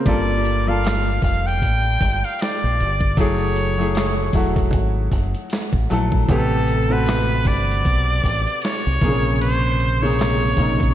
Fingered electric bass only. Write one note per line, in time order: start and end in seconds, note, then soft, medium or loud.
0.07 1.19 G1 loud
1.23 1.63 F1 medium
1.63 1.98 A1 medium
2.02 2.22 G1 medium
2.64 2.82 A#1 medium
2.81 3.18 G1 loud
3.18 4.31 F#1 loud
4.34 4.70 E1 medium
4.74 5.09 G#1 loud
5.13 5.33 F#1 medium
5.74 5.89 A1 medium
5.91 6.26 A#1 loud
6.29 7.42 A1 loud
7.46 7.82 G1 loud
7.86 8.21 B1 medium
8.25 8.45 A1 medium
8.87 9.01 C2 medium
9.03 10.54 A#1 loud
10.58 10.94 A#1 loud